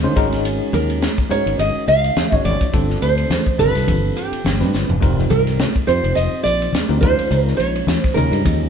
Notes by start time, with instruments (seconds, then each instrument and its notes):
Already playing: nylon-string guitar C#5
0.02 fretless electric bass D#3, tine electric piano G#3 C#4 D#4 F4 C5
0.16 fretless electric bass G#1, tine electric piano G#3 C#4 D#4 F#4 A#4, kick, hi-hat pedal, ride
0.32 snare, ride
0.45 hi-hat pedal, ride, muted conga
0.73 fretless electric bass D#2, nylon-string guitar A#4, hi-hat pedal, ride, muted conga, high conga
0.90 ride
1.02 snare, hi-hat pedal, ride
1.18 muted fretless electric bass stroke, kick, snare
1.29 fretless electric bass G#2, tine electric piano G#3 C#4 D#4 F#4 A#4, nylon-string guitar C#5, hi-hat pedal, ride, muted conga
1.46 fretless electric bass G#1, ride
1.59 fretless electric bass G#1, nylon-string guitar D#5, hi-hat pedal, ride, muted conga
1.75 muted fretless electric bass stroke
1.88 fretless electric bass C#2, nylon-string guitar F5, hi-hat pedal, ride
2.04 ride
2.16 muted fretless electric bass stroke, snare, hi-hat pedal, ride, high conga
2.32 fretless electric bass G#1, tine electric piano G#3 C#4 D#4 F#4 C#5, nylon-string guitar D#5, kick, snare
2.45 fretless electric bass G#1, nylon-string guitar D5, hi-hat pedal, ride, high conga
2.61 muted fretless electric bass stroke, kick, ride
2.73 fretless electric bass G1, tine electric piano G3 C4 D4 F4 A4, kick, hi-hat pedal, ride
2.90 snare
3.02 fretless electric bass D2, nylon-string guitar C5, hi-hat pedal, ride, muted conga
3.18 ride
3.30 snare, hi-hat pedal, ride, high conga
3.47 kick
3.58 fretless electric bass G1, tine electric piano G3 C4 D4 F4 A4, nylon-string guitar B4, hi-hat pedal, ride, muted conga, low conga
3.75 fretless electric bass C2, snare, ride
3.87 fretless electric bass G1, kick, hi-hat pedal, ride, muted conga, high conga
4.16 nylon-string guitar G4, hi-hat pedal, ride
4.32 muted fretless electric bass stroke, ride
4.44 fretless electric bass G1, snare, hi-hat pedal, ride, high conga
4.59 fretless electric bass G2, tine electric piano G3 C4 D4 F4 B4, snare
4.74 fretless electric bass G1, snare, hi-hat pedal
4.89 fretless electric bass F1, floor tom
5.01 fretless electric bass F1, tine electric piano G3 C4 D#4 F4 A#4, kick, hi-hat pedal, ride, muted conga
5.19 snare
5.30 fretless electric bass C2, nylon-string guitar A#4, hi-hat pedal, ride, muted conga, high conga
5.47 snare, ride
5.59 snare, hi-hat pedal, ride
5.76 muted fretless electric bass stroke, kick
5.87 fretless electric bass F2, tine electric piano G3 C4 D#4 F4 C5, nylon-string guitar C5, hi-hat pedal, ride, muted conga
6.04 fretless electric bass F1, ride
6.15 fretless electric bass F1, nylon-string guitar D#5, hi-hat pedal, ride, muted conga
6.32 muted fretless electric bass stroke
6.43 fretless electric bass A#1, nylon-string guitar D5, hi-hat pedal, ride
6.62 ride
6.73 muted fretless electric bass stroke, snare, hi-hat pedal, ride, high conga
6.88 fretless electric bass D2, tine electric piano G3 C4 D#4 F4 A#4
7.01 fretless electric bass D#2, tine electric piano G#3 C#4 D#4 F4 A#4, nylon-string guitar C5, kick, hi-hat pedal, ride, high conga
7.18 muted fretless electric bass stroke, ride
7.31 fretless electric bass C#2, hi-hat pedal, ride
7.43 nylon-string guitar A#4
7.48 snare
7.57 fretless electric bass A#1, nylon-string guitar C#5, hi-hat pedal, ride, muted conga
7.76 ride
7.87 snare, hi-hat pedal, ride, high conga
8.01 nylon-string guitar C5, kick, snare
8.14 fretless electric bass D#2, tine electric piano G#3 C#4 D#4 F4 A#4, nylon-string guitar A#4, hi-hat pedal, ride, muted conga, low conga
8.32 fretless electric bass G2, ride
8.45 fretless electric bass D#2, kick, hi-hat pedal, ride, muted conga, high conga